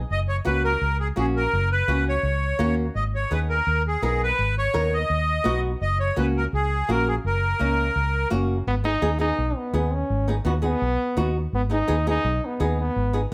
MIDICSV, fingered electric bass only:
0, 0, Header, 1, 2, 480
1, 0, Start_track
1, 0, Key_signature, 5, "minor"
1, 0, Tempo, 357143
1, 140, Time_signature, 4, 2, 24, 8
1, 17925, End_track
2, 0, Start_track
2, 0, Title_t, "Fingered electric bass"
2, 0, Program_c, 0, 33
2, 142, Note_on_c, 0, 30, 85
2, 524, Note_off_c, 0, 30, 0
2, 626, Note_on_c, 0, 37, 87
2, 1006, Note_off_c, 0, 37, 0
2, 1095, Note_on_c, 0, 37, 86
2, 1479, Note_off_c, 0, 37, 0
2, 1576, Note_on_c, 0, 34, 91
2, 1959, Note_off_c, 0, 34, 0
2, 2060, Note_on_c, 0, 30, 93
2, 2441, Note_off_c, 0, 30, 0
2, 2526, Note_on_c, 0, 37, 86
2, 2912, Note_off_c, 0, 37, 0
2, 3000, Note_on_c, 0, 37, 83
2, 3388, Note_off_c, 0, 37, 0
2, 3487, Note_on_c, 0, 39, 80
2, 3872, Note_off_c, 0, 39, 0
2, 3968, Note_on_c, 0, 32, 81
2, 4353, Note_off_c, 0, 32, 0
2, 4453, Note_on_c, 0, 39, 80
2, 4836, Note_off_c, 0, 39, 0
2, 4930, Note_on_c, 0, 39, 81
2, 5314, Note_off_c, 0, 39, 0
2, 5409, Note_on_c, 0, 35, 85
2, 5793, Note_off_c, 0, 35, 0
2, 5897, Note_on_c, 0, 32, 78
2, 6278, Note_off_c, 0, 32, 0
2, 6386, Note_on_c, 0, 39, 80
2, 6763, Note_off_c, 0, 39, 0
2, 6853, Note_on_c, 0, 39, 87
2, 7235, Note_off_c, 0, 39, 0
2, 7335, Note_on_c, 0, 35, 81
2, 7716, Note_off_c, 0, 35, 0
2, 7815, Note_on_c, 0, 30, 90
2, 8196, Note_off_c, 0, 30, 0
2, 8298, Note_on_c, 0, 37, 83
2, 8678, Note_off_c, 0, 37, 0
2, 8776, Note_on_c, 0, 37, 88
2, 9157, Note_off_c, 0, 37, 0
2, 9261, Note_on_c, 0, 34, 79
2, 9640, Note_off_c, 0, 34, 0
2, 9737, Note_on_c, 0, 30, 91
2, 10118, Note_off_c, 0, 30, 0
2, 10223, Note_on_c, 0, 37, 84
2, 10602, Note_off_c, 0, 37, 0
2, 10696, Note_on_c, 0, 37, 86
2, 11078, Note_off_c, 0, 37, 0
2, 11179, Note_on_c, 0, 30, 79
2, 11559, Note_off_c, 0, 30, 0
2, 11653, Note_on_c, 0, 32, 79
2, 12036, Note_off_c, 0, 32, 0
2, 12124, Note_on_c, 0, 39, 95
2, 12511, Note_off_c, 0, 39, 0
2, 12613, Note_on_c, 0, 35, 93
2, 12804, Note_off_c, 0, 35, 0
2, 13084, Note_on_c, 0, 39, 84
2, 13471, Note_off_c, 0, 39, 0
2, 13576, Note_on_c, 0, 32, 90
2, 13958, Note_off_c, 0, 32, 0
2, 14047, Note_on_c, 0, 39, 100
2, 14433, Note_off_c, 0, 39, 0
2, 14539, Note_on_c, 0, 35, 90
2, 14728, Note_off_c, 0, 35, 0
2, 15016, Note_on_c, 0, 39, 101
2, 15399, Note_off_c, 0, 39, 0
2, 15496, Note_on_c, 0, 32, 93
2, 15879, Note_off_c, 0, 32, 0
2, 15983, Note_on_c, 0, 39, 101
2, 16363, Note_off_c, 0, 39, 0
2, 16458, Note_on_c, 0, 35, 107
2, 16649, Note_off_c, 0, 35, 0
2, 16940, Note_on_c, 0, 39, 89
2, 17322, Note_off_c, 0, 39, 0
2, 17422, Note_on_c, 0, 32, 90
2, 17803, Note_off_c, 0, 32, 0
2, 17925, End_track
0, 0, End_of_file